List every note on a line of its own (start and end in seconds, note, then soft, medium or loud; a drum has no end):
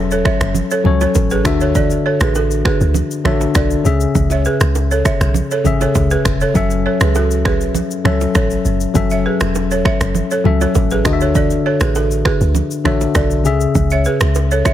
0.00 0.23 E1 medium
0.00 0.84 F#3 medium
0.00 0.85 C#4 medium
0.00 0.86 A4 medium
0.00 0.86 C#5 medium
0.00 0.28 E5 medium
0.11 0.23 A4 medium
0.11 0.22 C#5 medium
0.11 shaker medium
0.25 0.38 C#5 medium
0.25 0.37 E5 medium
0.25 finger snap medium
0.25 kick medium
0.25 cross-stick medium
0.25 low bongo medium
0.41 0.62 F#1 medium
0.41 finger snap medium
0.41 cross-stick medium
0.41 shaker soft
0.54 low conga medium
0.54 shaker medium
0.71 0.83 A4 medium
0.71 0.82 C#5 medium
0.71 shaker medium
0.84 1.06 C#2 medium
0.84 1.45 F#3 medium
0.84 1.45 C#4 medium
0.84 1.45 A4 medium
0.84 1.46 C#5 medium
0.84 low conga medium
1.01 1.13 A4 medium
1.01 1.12 C#5 medium
1.01 low bongo medium
1.01 shaker medium
1.15 1.47 A1 medium
1.15 kick medium
1.15 high bongo medium
1.15 shaker medium
1.30 1.42 G#4 medium
1.30 1.42 B4 medium
1.30 shaker medium
1.44 1.98 D2 loud
1.44 2.41 D3 medium
1.44 2.41 D4 medium
1.44 2.42 F#4 medium
1.44 2.42 E5 medium
1.44 finger snap medium
1.44 kick medium
1.44 cross-stick medium
1.44 shaker medium
1.61 1.73 A4 medium
1.61 1.72 C#5 medium
1.61 shaker medium
1.75 1.88 A4 medium
1.75 1.87 D5 medium
1.75 kick loud
1.75 low conga medium
1.75 shaker medium
1.90 shaker medium
2.06 2.18 A4 medium
2.06 2.17 C#5 medium
2.20 2.63 A1 medium
2.20 2.33 G#4 medium
2.20 2.32 B4 medium
2.20 finger snap medium
2.20 cross-stick loud
2.20 low bongo medium
2.20 shaker medium
2.35 2.48 F#4 medium
2.35 2.47 A4 medium
2.35 high bongo medium
2.35 shaker medium
2.51 shaker medium
2.65 2.78 G#4 medium
2.65 2.77 B4 medium
2.65 finger snap medium
2.65 kick medium
2.65 cross-stick medium
2.65 low bongo medium
2.81 3.02 D2 medium
2.81 shaker soft
2.94 low conga medium
2.94 shaker medium
3.11 shaker medium
3.24 3.46 A1 medium
3.24 3.85 D3 medium
3.24 3.85 D4 medium
3.24 3.85 F#4 medium
3.24 3.38 A4 medium
3.24 3.37 C#5 medium
3.24 3.85 E5 medium
3.24 finger snap medium
3.24 cross-stick medium
3.24 low conga medium
3.41 low bongo medium
3.41 shaker medium
3.55 3.76 B1 loud
3.55 3.79 A4 medium
3.55 3.78 D5 medium
3.55 finger snap medium
3.55 kick medium
3.55 cross-stick loud
3.55 high bongo medium
3.55 shaker medium
3.71 shaker soft
3.84 4.06 C#2 loud
3.84 4.81 C#3 medium
3.84 4.81 C#4 medium
3.84 4.82 G#4 medium
3.84 4.82 E5 loud
3.84 shaker medium
4.01 shaker medium
4.15 4.47 C#2 loud
4.15 kick loud
4.15 low conga medium
4.15 shaker medium
4.30 4.43 C#5 medium
4.30 4.42 E5 medium
4.30 low bongo medium
4.30 shaker medium
4.45 4.58 G#4 medium
4.45 4.57 B4 medium
4.45 shaker medium
4.61 5.03 C#2 medium
4.61 finger snap medium
4.61 cross-stick loud
4.61 low bongo medium
4.61 shaker medium
4.75 high bongo medium
4.75 shaker medium
4.91 5.03 A4 medium
4.91 5.02 C#5 medium
4.91 shaker medium
5.05 5.18 C#5 medium
5.05 5.17 E5 medium
5.05 finger snap medium
5.05 kick medium
5.05 cross-stick medium
5.05 low bongo medium
5.05 shaker medium
5.21 5.42 B1 medium
5.21 finger snap medium
5.21 cross-stick medium
5.21 shaker soft
5.34 low conga medium
5.34 shaker medium
5.51 5.63 A4 medium
5.51 5.62 C#5 medium
5.51 shaker medium
5.64 5.86 G#1 medium
5.64 6.34 C#3 medium
5.64 6.35 C#4 medium
5.64 6.35 G#4 medium
5.64 6.35 E5 medium
5.64 low conga medium
5.64 shaker medium
5.81 5.93 A4 medium
5.81 5.92 C#5 medium
5.81 low bongo medium
5.81 shaker medium
5.95 6.16 C#2 medium
5.95 kick medium
5.95 high bongo medium
5.95 shaker medium
6.11 6.23 G#4 medium
6.11 6.22 B4 medium
6.11 shaker medium
6.25 6.46 E1 medium
6.25 finger snap medium
6.25 kick medium
6.25 cross-stick medium
6.25 shaker medium
6.41 6.53 A4 medium
6.41 6.52 C#5 medium
6.41 shaker medium
6.54 6.87 F#1 loud
6.54 7.47 F#3 medium
6.54 7.47 C#4 medium
6.54 7.48 A4 medium
6.54 6.68 C#5 medium
6.54 6.67 E5 medium
6.54 7.48 E5 loud
6.54 kick loud
6.54 low conga medium
6.54 shaker medium
6.71 shaker medium
6.86 6.98 A4 medium
6.86 6.97 C#5 medium
7.01 7.62 C#2 medium
7.01 7.13 G#4 medium
7.01 7.12 B4 medium
7.01 finger snap medium
7.01 cross-stick loud
7.01 low bongo medium
7.01 shaker medium
7.15 7.28 F#4 medium
7.15 7.27 A4 medium
7.15 high bongo medium
7.15 shaker medium
7.31 shaker medium
7.45 7.58 G#4 medium
7.45 7.57 B4 medium
7.45 finger snap medium
7.45 kick medium
7.45 cross-stick medium
7.45 low bongo medium
7.61 7.82 B1 medium
7.61 shaker soft
7.75 low conga medium
7.75 shaker medium
7.91 shaker medium
8.04 8.26 C#2 medium
8.04 8.74 F#3 medium
8.04 8.75 C#4 medium
8.04 8.75 A4 medium
8.04 8.18 A4 medium
8.04 8.17 C#5 medium
8.04 8.75 E5 medium
8.04 finger snap medium
8.04 cross-stick medium
8.04 low conga medium
8.21 low bongo medium
8.21 shaker medium
8.35 8.56 A1 medium
8.35 8.59 A4 medium
8.35 8.58 C#5 medium
8.35 finger snap medium
8.35 kick medium
8.35 cross-stick loud
8.35 high bongo medium
8.35 shaker medium
8.50 shaker soft
8.65 8.86 F#1 loud
8.65 shaker medium
8.81 shaker medium
8.94 9.27 F#1 loud
8.94 9.87 F#3 medium
8.94 9.87 C#4 medium
8.94 9.88 A4 medium
8.94 9.88 E5 medium
8.94 kick loud
8.94 low conga medium
8.94 shaker medium
9.10 9.23 C#5 medium
9.10 9.22 E5 medium
9.10 shaker medium
9.26 9.38 G#4 medium
9.26 9.37 B4 medium
9.40 9.83 E1 medium
9.40 finger snap medium
9.40 cross-stick loud
9.40 low bongo medium
9.40 shaker medium
9.55 high bongo medium
9.55 shaker medium
9.71 9.83 A4 medium
9.71 9.82 C#5 medium
9.71 shaker medium
9.85 9.98 C#5 medium
9.85 9.97 E5 medium
9.85 finger snap medium
9.85 kick medium
9.85 cross-stick medium
9.85 low bongo medium
10.01 10.22 F#1 medium
10.01 finger snap medium
10.01 cross-stick medium
10.01 shaker soft
10.15 low conga medium
10.15 shaker medium
10.31 10.43 A4 medium
10.31 10.42 C#5 medium
10.31 shaker medium
10.44 10.66 C#2 medium
10.44 11.05 F#3 medium
10.44 11.05 C#4 medium
10.44 11.05 A4 medium
10.44 11.06 E5 medium
10.44 low conga medium
10.61 10.73 A4 medium
10.61 10.72 C#5 medium
10.61 low bongo medium
10.61 shaker medium
10.75 11.07 A1 loud
10.75 kick medium
10.75 high bongo medium
10.75 shaker medium
10.91 11.03 G#4 medium
10.91 11.02 B4 medium
10.91 shaker medium
11.04 11.58 D2 loud
11.04 12.01 D3 medium
11.04 12.01 D4 medium
11.04 12.02 F#4 medium
11.04 11.13 D#5 medium
11.04 finger snap medium
11.04 kick loud
11.04 cross-stick loud
11.04 shaker medium
11.13 12.05 E5 loud
11.21 11.33 A4 medium
11.21 11.32 C#5 medium
11.21 shaker medium
11.35 11.48 A4 medium
11.35 11.47 D5 medium
11.35 kick loud
11.35 low conga medium
11.35 shaker medium
11.50 shaker medium
11.66 11.78 A4 medium
11.66 11.77 C#5 medium
11.81 12.23 A1 medium
11.81 11.93 G#4 medium
11.81 11.92 B4 medium
11.81 finger snap medium
11.81 cross-stick loud
11.81 low bongo medium
11.81 shaker medium
11.95 12.08 F#4 medium
11.95 12.07 A4 medium
11.95 high bongo medium
11.95 shaker medium
12.11 shaker medium
12.25 12.38 G#4 medium
12.25 12.37 B4 medium
12.25 finger snap medium
12.25 kick medium
12.25 cross-stick medium
12.25 low bongo medium
12.41 12.62 D2 medium
12.41 shaker soft
12.55 low conga medium
12.55 shaker medium
12.71 shaker medium
12.84 13.06 A1 medium
12.84 13.45 D3 medium
12.84 13.45 D4 medium
12.84 13.45 F#4 medium
12.84 12.98 A4 medium
12.84 12.97 C#5 medium
12.84 13.45 E5 medium
12.84 finger snap medium
12.84 cross-stick medium
12.84 low conga medium
13.01 low bongo medium
13.01 shaker medium
13.15 13.47 B1 loud
13.15 13.39 A4 medium
13.15 13.38 D5 medium
13.15 finger snap medium
13.15 kick medium
13.15 cross-stick loud
13.15 high bongo medium
13.15 shaker medium
13.31 shaker medium
13.44 13.66 C#2 loud
13.44 14.41 C#3 medium
13.44 14.41 C#4 medium
13.44 14.42 G#4 medium
13.44 14.42 E5 loud
13.44 shaker medium
13.61 shaker medium
13.75 14.07 C#2 loud
13.75 kick loud
13.75 low conga medium
13.75 shaker medium
13.90 14.03 C#5 medium
13.90 14.02 E5 medium
13.90 shaker medium
14.05 14.18 G#4 medium
14.05 14.18 B4 medium
14.05 shaker medium
14.20 14.63 C#2 medium
14.20 finger snap medium
14.20 cross-stick loud
14.20 low bongo medium
14.20 shaker medium
14.35 high bongo medium
14.35 shaker medium
14.51 14.63 A4 medium
14.51 14.62 C#5 medium
14.51 shaker medium
14.65 14.74 C#5 medium
14.65 14.74 E5 medium
14.65 finger snap medium
14.65 kick medium
14.65 cross-stick medium
14.65 low bongo medium
14.65 shaker medium